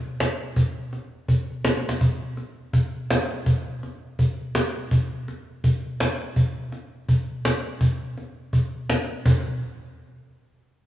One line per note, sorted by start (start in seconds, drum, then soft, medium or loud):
0.20 cajon slap medium
0.56 cajon bass soft
0.93 cajon slap soft
1.28 cajon bass soft
1.65 cajon slap medium
1.77 cajon slap soft
1.89 cajon slap soft
2.01 cajon bass soft
2.37 cajon slap soft
2.73 cajon bass soft
3.10 cajon slap medium
3.46 cajon bass soft
3.83 cajon slap soft
4.19 cajon bass soft
4.55 cajon slap medium
4.91 cajon bass soft
5.28 cajon slap soft
5.64 cajon bass soft
6.00 cajon slap medium
6.36 cajon bass soft
6.72 cajon slap soft
7.09 cajon bass soft
7.45 cajon slap medium
7.81 cajon bass soft
8.17 cajon slap soft
8.53 cajon bass soft
8.89 cajon slap medium
9.26 cajon bass medium